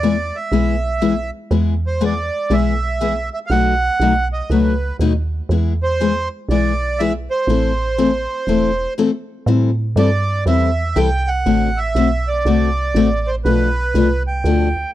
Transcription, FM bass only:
0.00 0.32 E2 medium
0.52 1.31 B1 medium
1.51 2.31 E2 loud
2.50 3.30 B1 medium
3.50 3.90 B1 medium
4.00 4.42 B1 medium
4.50 4.92 C#2 medium
4.99 5.42 D#2 medium
5.49 6.29 E2 medium
6.49 7.28 B1 medium
7.47 8.27 A1 loud
8.47 8.87 E1 medium
9.46 9.95 A2 medium
9.96 10.45 G2 medium
10.46 10.95 E2 medium
10.96 11.45 C2 medium
11.46 11.95 A1 medium
11.95 12.44 B1 medium
12.45 12.94 C2 medium
12.95 13.43 A1 medium
13.45 13.94 B1 loud
13.95 14.43 C2 medium
14.44 14.74 D2 medium
14.76 14.85 D2 soft

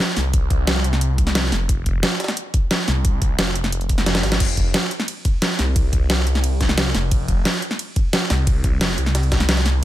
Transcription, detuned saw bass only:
0.17 0.66 C2 loud
0.67 1.51 C2 loud
1.52 1.68 F1 loud
1.69 2.02 F1 loud
2.88 3.37 C2 loud
3.39 4.22 F1 loud
4.23 4.39 G#1 loud
4.40 4.73 F1 loud
5.59 6.08 C2 loud
6.10 6.93 C2 loud
6.95 7.10 F1 loud
7.11 7.44 F1 medium
8.30 8.80 C2 loud
8.81 8.97 F1 loud
8.98 9.81 C2 loud

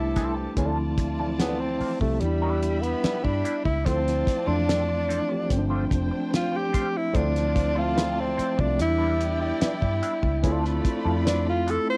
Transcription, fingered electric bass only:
0.00 0.46 C2 medium
0.57 1.76 D2 medium
1.80 muted fingered electric bass stroke soft
2.01 2.19 C2 medium
2.22 2.93 E2 medium
3.04 muted fingered electric bass stroke soft
3.25 3.42 G2 medium
3.66 3.83 C#2 medium
3.86 4.22 D2 loud
4.47 5.19 F2 medium
5.51 5.86 G1 loud
5.91 6.09 F1 medium
7.15 8.34 D2 loud
8.39 muted fingered electric bass stroke soft
8.59 8.77 C2 medium
8.79 9.51 E2 loud
9.62 muted fingered electric bass stroke soft
9.83 10.00 G2 medium
10.23 10.41 C#2 medium
10.44 10.80 D2 loud
11.05 11.77 F2 medium

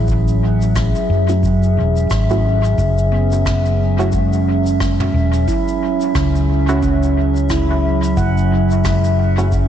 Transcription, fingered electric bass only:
0.00 0.92 A1 medium
1.10 1.79 F#2 medium
1.77 2.07 E1 medium
2.11 2.75 G#1 medium
2.78 5.11 F#1 medium
5.14 5.44 E1 medium
6.15 8.15 C#2 medium
8.17 9.68 F#1 loud

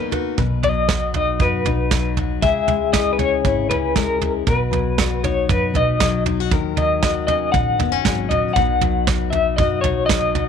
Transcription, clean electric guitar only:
0.64 1.11 D#5 medium
1.16 1.42 D#5 medium
1.42 2.14 B4 medium
2.42 2.93 E5 medium
2.93 3.10 D#5 medium
3.13 3.19 B4 medium
3.20 3.67 C#5 medium
3.70 3.96 B4 medium
3.97 4.32 A#4 medium
4.47 5.24 B4 medium
5.24 5.50 C#5 medium
5.50 5.76 B4 medium
5.76 6.23 D#5 medium
6.78 7.26 D#5 medium
7.27 7.52 D#5 medium
7.52 8.25 F#5 medium
8.29 8.53 D#5 medium
8.54 9.30 F#5 medium
9.30 9.56 E5 medium
9.57 9.81 D#5 medium
9.81 10.06 C#5 medium
10.06 10.43 D#5 medium

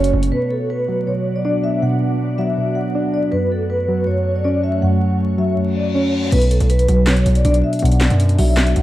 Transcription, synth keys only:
0.00 0.34 F#2 loud
0.00 0.32 F#3 medium
0.00 0.34 C#4 loud
0.32 0.50 B2 medium
0.51 1.06 B2 medium
0.88 1.82 F#3 medium
1.07 1.81 B2 medium
1.45 2.39 D4 loud
1.82 2.00 B2 medium
2.01 2.56 B2 medium
2.39 3.32 F#3 medium
2.58 3.32 B2 medium
2.95 3.32 D4 medium
3.32 3.50 F#2 medium
3.51 4.06 F#2 medium
3.88 4.82 F#3 medium
4.07 4.81 F#2 medium
4.45 5.39 C#4 medium
4.82 5.00 F#2 medium
5.01 5.56 F#2 medium
5.38 6.32 F#3 medium
5.57 6.32 F#2 medium
5.95 6.32 C#4 medium
6.32 6.50 B2 medium
6.51 7.06 B2 medium
6.88 7.82 F#3 medium
7.08 7.81 B2 medium
7.45 8.39 D4 loud
7.82 8.00 B2 medium
8.01 8.56 B2 medium
8.39 8.82 F#3 loud
8.58 8.82 B2 medium

